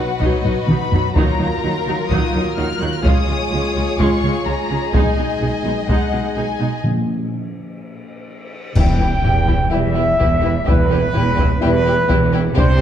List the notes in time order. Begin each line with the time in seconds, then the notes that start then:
Already playing: F#3 D#4 F#4 B4 F#5
0.19 B1 B2 F#3 D#4 D#5, taiko
0.43 B1 B2 F#3 D#4, taiko low-mid
0.66 B1 B2 B5, taiko mid
0.70 F#3 D#4
0.91 B1 B2 F#3 D#4, taiko low
1.14 D#2 D#3 F#3 D#4 F4 A#4 A#5, taiko
1.39 D#2 D#3 F#3 D#4
1.63 D#2 D#3 F#3 D#4
1.86 D#2 D#3 F#3 D#4
2.09 D#2 D#3 F#3 D#4 D#6, taiko
2.34 D#2 D#3 F#3 D#4
2.56 D#2 D#3 F#3 D#4 F6
2.81 D#2 D#3 F#3 D#4 F#6
2.94 F6
3.04 C#2 C#3 G#3 F4 G#4 C#5 D#6, taiko
3.28 C#2 C#3 G#3 F4
3.51 C#2 C#3 G#3 F4
3.75 C#2 C#3 G#3 F4
3.98 C#2 C#3 G#3 F4 C#6, taiko
4.22 C#2 C#3 G#3 F4
4.45 C#2 C#3 G#3 F4 A#5
4.69 C#2 C#3 G#3 F4
4.92 B1 B2 G#3 D#4 D#5 G#5, taiko
5.16 B1 B2 G#3 D#4
5.40 B1 B2 G#3 D#4
5.64 B1 B2 G#3 D#4
5.87 B1 B2 G#3 D#4 F#5, taiko
6.11 B1 B2 G#3 D#4
6.35 B1 B2 G#3 D#4 G#5
6.59 B1 B2 G#3 D#4
6.84 A#2
8.75 E1 E2 G3 E4 G4 B4 G5, concert bass drum, taiko, crash
9.00 E4 G4 B4
9.23 E1 E2 E4 G4 B4, taiko low-mid
9.47 E4 G4 B4, taiko
9.70 E1 E2 G3 E4 G4 B4 E5
9.95 E4 G4 B4
10.19 E1 E2 E4 G4 B4, taiko
10.40 E4 G4
10.45 B4
10.65 E1 E2 G3 E4 G4 B4, taiko
10.91 E4 G4 B4
11.13 E1 E2 E4 G4 B4, taiko low-mid
11.36 E4 G4 B4, taiko
11.61 E1 E2 G3 E4 G4 B4
11.85 E4 G4 B4
12.08 E1 E2 E4 G4 B4, taiko
12.32 E4 G4 B4
12.55 C2 C3 G3 D4 G4 C5, taiko
12.77 G4